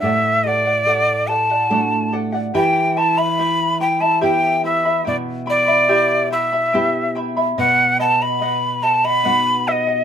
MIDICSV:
0, 0, Header, 1, 4, 480
1, 0, Start_track
1, 0, Key_signature, 1, "minor"
1, 0, Tempo, 838223
1, 18, Time_signature, 3, 2, 24, 8
1, 5750, End_track
2, 0, Start_track
2, 0, Title_t, "Quena"
2, 0, Program_c, 0, 77
2, 0, Note_on_c, 0, 76, 85
2, 251, Note_on_c, 0, 75, 85
2, 259, Note_off_c, 0, 76, 0
2, 272, Note_on_c, 0, 74, 92
2, 278, Note_off_c, 0, 75, 0
2, 730, Note_on_c, 0, 81, 78
2, 738, Note_off_c, 0, 74, 0
2, 1214, Note_off_c, 0, 81, 0
2, 1469, Note_on_c, 0, 79, 79
2, 1703, Note_on_c, 0, 81, 89
2, 1712, Note_off_c, 0, 79, 0
2, 1824, Note_on_c, 0, 83, 94
2, 1832, Note_off_c, 0, 81, 0
2, 2179, Note_off_c, 0, 83, 0
2, 2182, Note_on_c, 0, 79, 82
2, 2296, Note_on_c, 0, 81, 80
2, 2304, Note_off_c, 0, 79, 0
2, 2417, Note_off_c, 0, 81, 0
2, 2427, Note_on_c, 0, 79, 81
2, 2646, Note_off_c, 0, 79, 0
2, 2664, Note_on_c, 0, 76, 78
2, 2884, Note_off_c, 0, 76, 0
2, 2906, Note_on_c, 0, 74, 73
2, 2959, Note_off_c, 0, 74, 0
2, 3148, Note_on_c, 0, 74, 81
2, 3600, Note_off_c, 0, 74, 0
2, 3622, Note_on_c, 0, 76, 73
2, 4077, Note_off_c, 0, 76, 0
2, 4348, Note_on_c, 0, 78, 89
2, 4566, Note_off_c, 0, 78, 0
2, 4584, Note_on_c, 0, 81, 95
2, 4707, Note_on_c, 0, 83, 89
2, 4716, Note_off_c, 0, 81, 0
2, 5057, Note_on_c, 0, 81, 89
2, 5065, Note_off_c, 0, 83, 0
2, 5182, Note_on_c, 0, 83, 103
2, 5190, Note_off_c, 0, 81, 0
2, 5542, Note_on_c, 0, 76, 75
2, 5551, Note_off_c, 0, 83, 0
2, 5565, Note_on_c, 0, 75, 81
2, 5571, Note_off_c, 0, 76, 0
2, 5750, Note_off_c, 0, 75, 0
2, 5750, End_track
3, 0, Start_track
3, 0, Title_t, "Charango"
3, 0, Program_c, 1, 24
3, 18, Note_on_c, 1, 69, 49
3, 22, Note_on_c, 1, 74, 58
3, 26, Note_on_c, 1, 78, 51
3, 252, Note_off_c, 1, 69, 0
3, 257, Note_off_c, 1, 74, 0
3, 258, Note_on_c, 1, 69, 50
3, 260, Note_off_c, 1, 78, 0
3, 264, Note_on_c, 1, 74, 53
3, 267, Note_on_c, 1, 78, 55
3, 368, Note_off_c, 1, 78, 0
3, 374, Note_off_c, 1, 74, 0
3, 375, Note_on_c, 1, 78, 47
3, 378, Note_off_c, 1, 69, 0
3, 380, Note_on_c, 1, 74, 39
3, 490, Note_off_c, 1, 74, 0
3, 493, Note_off_c, 1, 78, 0
3, 493, Note_on_c, 1, 69, 70
3, 497, Note_on_c, 1, 74, 69
3, 500, Note_on_c, 1, 78, 76
3, 728, Note_off_c, 1, 69, 0
3, 732, Note_off_c, 1, 74, 0
3, 734, Note_off_c, 1, 78, 0
3, 735, Note_on_c, 1, 69, 52
3, 739, Note_on_c, 1, 74, 52
3, 741, Note_on_c, 1, 78, 57
3, 854, Note_off_c, 1, 78, 0
3, 857, Note_off_c, 1, 69, 0
3, 859, Note_off_c, 1, 74, 0
3, 861, Note_on_c, 1, 78, 48
3, 867, Note_on_c, 1, 74, 39
3, 971, Note_off_c, 1, 74, 0
3, 973, Note_on_c, 1, 69, 53
3, 974, Note_off_c, 1, 78, 0
3, 980, Note_on_c, 1, 74, 47
3, 981, Note_on_c, 1, 78, 52
3, 1208, Note_off_c, 1, 69, 0
3, 1212, Note_off_c, 1, 74, 0
3, 1214, Note_on_c, 1, 69, 49
3, 1215, Note_off_c, 1, 78, 0
3, 1218, Note_on_c, 1, 74, 53
3, 1222, Note_on_c, 1, 78, 57
3, 1325, Note_off_c, 1, 78, 0
3, 1332, Note_on_c, 1, 78, 52
3, 1335, Note_off_c, 1, 74, 0
3, 1336, Note_off_c, 1, 69, 0
3, 1342, Note_on_c, 1, 74, 39
3, 1454, Note_on_c, 1, 67, 59
3, 1455, Note_off_c, 1, 78, 0
3, 1456, Note_off_c, 1, 74, 0
3, 1456, Note_on_c, 1, 64, 65
3, 1458, Note_on_c, 1, 76, 74
3, 1458, Note_on_c, 1, 79, 67
3, 1460, Note_on_c, 1, 83, 73
3, 1690, Note_off_c, 1, 79, 0
3, 1693, Note_off_c, 1, 64, 0
3, 1694, Note_off_c, 1, 76, 0
3, 1696, Note_off_c, 1, 67, 0
3, 1697, Note_on_c, 1, 79, 54
3, 1699, Note_off_c, 1, 83, 0
3, 1700, Note_on_c, 1, 64, 50
3, 1701, Note_on_c, 1, 76, 55
3, 1706, Note_on_c, 1, 83, 59
3, 1809, Note_off_c, 1, 83, 0
3, 1813, Note_off_c, 1, 76, 0
3, 1816, Note_on_c, 1, 83, 47
3, 1817, Note_off_c, 1, 79, 0
3, 1819, Note_off_c, 1, 64, 0
3, 1820, Note_on_c, 1, 76, 38
3, 1825, Note_on_c, 1, 64, 36
3, 1936, Note_off_c, 1, 64, 0
3, 1937, Note_off_c, 1, 83, 0
3, 1939, Note_off_c, 1, 76, 0
3, 1942, Note_on_c, 1, 79, 57
3, 1943, Note_on_c, 1, 64, 50
3, 1946, Note_on_c, 1, 76, 62
3, 1949, Note_on_c, 1, 83, 61
3, 2170, Note_off_c, 1, 79, 0
3, 2172, Note_off_c, 1, 64, 0
3, 2174, Note_off_c, 1, 76, 0
3, 2176, Note_off_c, 1, 83, 0
3, 2177, Note_on_c, 1, 79, 50
3, 2179, Note_on_c, 1, 64, 58
3, 2180, Note_on_c, 1, 76, 56
3, 2182, Note_on_c, 1, 83, 59
3, 2286, Note_off_c, 1, 83, 0
3, 2290, Note_off_c, 1, 76, 0
3, 2293, Note_on_c, 1, 83, 53
3, 2295, Note_off_c, 1, 64, 0
3, 2297, Note_off_c, 1, 79, 0
3, 2297, Note_on_c, 1, 76, 40
3, 2302, Note_on_c, 1, 64, 39
3, 2406, Note_off_c, 1, 64, 0
3, 2407, Note_off_c, 1, 76, 0
3, 2411, Note_off_c, 1, 83, 0
3, 2412, Note_on_c, 1, 67, 61
3, 2413, Note_on_c, 1, 64, 67
3, 2413, Note_on_c, 1, 79, 64
3, 2414, Note_on_c, 1, 76, 73
3, 2418, Note_on_c, 1, 83, 72
3, 2647, Note_off_c, 1, 79, 0
3, 2650, Note_off_c, 1, 64, 0
3, 2653, Note_off_c, 1, 76, 0
3, 2654, Note_on_c, 1, 79, 51
3, 2655, Note_off_c, 1, 67, 0
3, 2656, Note_off_c, 1, 83, 0
3, 2657, Note_on_c, 1, 64, 56
3, 2660, Note_on_c, 1, 76, 59
3, 2663, Note_on_c, 1, 83, 59
3, 2770, Note_off_c, 1, 83, 0
3, 2776, Note_off_c, 1, 76, 0
3, 2776, Note_off_c, 1, 79, 0
3, 2777, Note_off_c, 1, 64, 0
3, 2777, Note_on_c, 1, 83, 49
3, 2783, Note_on_c, 1, 76, 50
3, 2785, Note_on_c, 1, 64, 42
3, 2885, Note_off_c, 1, 64, 0
3, 2887, Note_off_c, 1, 76, 0
3, 2889, Note_on_c, 1, 79, 51
3, 2892, Note_off_c, 1, 83, 0
3, 2892, Note_on_c, 1, 64, 50
3, 2894, Note_on_c, 1, 76, 50
3, 2899, Note_on_c, 1, 83, 48
3, 3119, Note_off_c, 1, 79, 0
3, 3124, Note_off_c, 1, 64, 0
3, 3124, Note_off_c, 1, 76, 0
3, 3126, Note_off_c, 1, 83, 0
3, 3126, Note_on_c, 1, 79, 57
3, 3131, Note_on_c, 1, 64, 58
3, 3131, Note_on_c, 1, 76, 55
3, 3133, Note_on_c, 1, 83, 61
3, 3241, Note_off_c, 1, 83, 0
3, 3245, Note_off_c, 1, 76, 0
3, 3248, Note_on_c, 1, 83, 45
3, 3252, Note_off_c, 1, 64, 0
3, 3252, Note_off_c, 1, 79, 0
3, 3252, Note_on_c, 1, 76, 40
3, 3258, Note_on_c, 1, 64, 37
3, 3367, Note_off_c, 1, 76, 0
3, 3368, Note_off_c, 1, 64, 0
3, 3370, Note_on_c, 1, 67, 67
3, 3371, Note_off_c, 1, 83, 0
3, 3372, Note_on_c, 1, 79, 67
3, 3374, Note_on_c, 1, 76, 76
3, 3375, Note_on_c, 1, 64, 68
3, 3378, Note_on_c, 1, 83, 67
3, 3604, Note_off_c, 1, 79, 0
3, 3607, Note_off_c, 1, 64, 0
3, 3611, Note_on_c, 1, 79, 55
3, 3612, Note_off_c, 1, 76, 0
3, 3614, Note_off_c, 1, 67, 0
3, 3614, Note_on_c, 1, 64, 53
3, 3615, Note_off_c, 1, 83, 0
3, 3618, Note_on_c, 1, 76, 55
3, 3622, Note_on_c, 1, 83, 60
3, 3730, Note_off_c, 1, 83, 0
3, 3733, Note_off_c, 1, 76, 0
3, 3734, Note_off_c, 1, 79, 0
3, 3736, Note_off_c, 1, 64, 0
3, 3737, Note_on_c, 1, 83, 51
3, 3740, Note_on_c, 1, 76, 40
3, 3742, Note_on_c, 1, 64, 45
3, 3851, Note_off_c, 1, 64, 0
3, 3855, Note_on_c, 1, 79, 60
3, 3856, Note_off_c, 1, 76, 0
3, 3857, Note_off_c, 1, 83, 0
3, 3858, Note_on_c, 1, 64, 53
3, 3863, Note_on_c, 1, 76, 55
3, 3864, Note_on_c, 1, 83, 61
3, 4088, Note_off_c, 1, 79, 0
3, 4092, Note_off_c, 1, 64, 0
3, 4095, Note_off_c, 1, 76, 0
3, 4095, Note_on_c, 1, 79, 56
3, 4096, Note_off_c, 1, 83, 0
3, 4099, Note_on_c, 1, 64, 55
3, 4102, Note_on_c, 1, 76, 55
3, 4103, Note_on_c, 1, 83, 59
3, 4211, Note_off_c, 1, 83, 0
3, 4215, Note_off_c, 1, 76, 0
3, 4216, Note_off_c, 1, 79, 0
3, 4218, Note_off_c, 1, 64, 0
3, 4218, Note_on_c, 1, 83, 56
3, 4222, Note_on_c, 1, 76, 44
3, 4224, Note_on_c, 1, 64, 42
3, 4337, Note_off_c, 1, 76, 0
3, 4338, Note_off_c, 1, 83, 0
3, 4339, Note_off_c, 1, 64, 0
3, 4339, Note_on_c, 1, 75, 65
3, 4341, Note_on_c, 1, 71, 69
3, 4345, Note_on_c, 1, 78, 77
3, 4568, Note_off_c, 1, 71, 0
3, 4572, Note_off_c, 1, 75, 0
3, 4575, Note_on_c, 1, 71, 59
3, 4576, Note_off_c, 1, 78, 0
3, 4578, Note_on_c, 1, 75, 65
3, 4583, Note_on_c, 1, 78, 65
3, 4690, Note_off_c, 1, 78, 0
3, 4696, Note_off_c, 1, 71, 0
3, 4697, Note_on_c, 1, 78, 39
3, 4698, Note_off_c, 1, 75, 0
3, 4706, Note_on_c, 1, 75, 38
3, 4812, Note_off_c, 1, 75, 0
3, 4814, Note_off_c, 1, 78, 0
3, 4815, Note_on_c, 1, 71, 51
3, 4819, Note_on_c, 1, 75, 65
3, 4821, Note_on_c, 1, 78, 68
3, 5042, Note_off_c, 1, 71, 0
3, 5048, Note_off_c, 1, 75, 0
3, 5049, Note_on_c, 1, 71, 50
3, 5052, Note_off_c, 1, 78, 0
3, 5055, Note_on_c, 1, 75, 56
3, 5059, Note_on_c, 1, 78, 58
3, 5166, Note_off_c, 1, 78, 0
3, 5171, Note_off_c, 1, 75, 0
3, 5172, Note_on_c, 1, 78, 54
3, 5173, Note_off_c, 1, 71, 0
3, 5178, Note_on_c, 1, 75, 40
3, 5289, Note_off_c, 1, 75, 0
3, 5291, Note_off_c, 1, 78, 0
3, 5292, Note_on_c, 1, 71, 69
3, 5296, Note_on_c, 1, 75, 68
3, 5298, Note_on_c, 1, 78, 75
3, 5529, Note_off_c, 1, 71, 0
3, 5535, Note_off_c, 1, 75, 0
3, 5536, Note_on_c, 1, 71, 47
3, 5538, Note_off_c, 1, 78, 0
3, 5542, Note_on_c, 1, 75, 61
3, 5544, Note_on_c, 1, 78, 60
3, 5644, Note_off_c, 1, 78, 0
3, 5651, Note_on_c, 1, 78, 50
3, 5653, Note_off_c, 1, 75, 0
3, 5657, Note_off_c, 1, 71, 0
3, 5660, Note_on_c, 1, 75, 45
3, 5750, Note_off_c, 1, 75, 0
3, 5750, Note_off_c, 1, 78, 0
3, 5750, End_track
4, 0, Start_track
4, 0, Title_t, "Nylon-string guitar"
4, 0, Program_c, 2, 24
4, 13, Note_on_c, 2, 45, 60
4, 976, Note_on_c, 2, 57, 46
4, 978, Note_on_c, 2, 62, 42
4, 979, Note_on_c, 2, 66, 46
4, 1432, Note_off_c, 2, 45, 0
4, 1443, Note_off_c, 2, 57, 0
4, 1443, Note_off_c, 2, 62, 0
4, 1444, Note_off_c, 2, 66, 0
4, 1459, Note_on_c, 2, 52, 65
4, 2419, Note_on_c, 2, 59, 42
4, 2423, Note_on_c, 2, 64, 43
4, 2424, Note_on_c, 2, 67, 54
4, 2875, Note_off_c, 2, 52, 0
4, 2884, Note_off_c, 2, 59, 0
4, 2885, Note_off_c, 2, 64, 0
4, 2886, Note_off_c, 2, 67, 0
4, 2904, Note_on_c, 2, 47, 56
4, 3859, Note_on_c, 2, 59, 46
4, 3862, Note_on_c, 2, 64, 45
4, 3864, Note_on_c, 2, 67, 51
4, 4318, Note_off_c, 2, 47, 0
4, 4324, Note_off_c, 2, 59, 0
4, 4325, Note_off_c, 2, 64, 0
4, 4327, Note_off_c, 2, 67, 0
4, 4341, Note_on_c, 2, 47, 65
4, 5298, Note_on_c, 2, 59, 47
4, 5301, Note_on_c, 2, 63, 43
4, 5304, Note_on_c, 2, 66, 52
4, 5750, Note_off_c, 2, 47, 0
4, 5750, Note_off_c, 2, 59, 0
4, 5750, Note_off_c, 2, 63, 0
4, 5750, Note_off_c, 2, 66, 0
4, 5750, End_track
0, 0, End_of_file